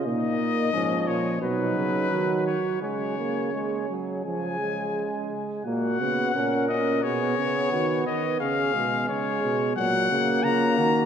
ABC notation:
X:1
M:4/4
L:1/8
Q:1/4=87
K:F#
V:1 name="Trumpet"
d3 c B3 c | c3 z g3 z | f3 d c3 d | e2 c2 f2 a2 |]
V:2 name="Flugelhorn"
D2 C z D2 F2 | G4 G3 z | F2 A2 G2 F B | G4 F2 E F |]
V:3 name="Trombone"
A,2 E,2 F,4 | G, A, G, F, E, G,3 | A, B, C C B, B,3 | C G,3 F, A,3 |]
V:4 name="Euphonium" clef=bass
A,, A,, G,, A,, B,, C, D, z | C,4 C,3 z | A,, C, A,,2 B,, C, D, D, | C, B,, C, B,, A,, C, C, D, |]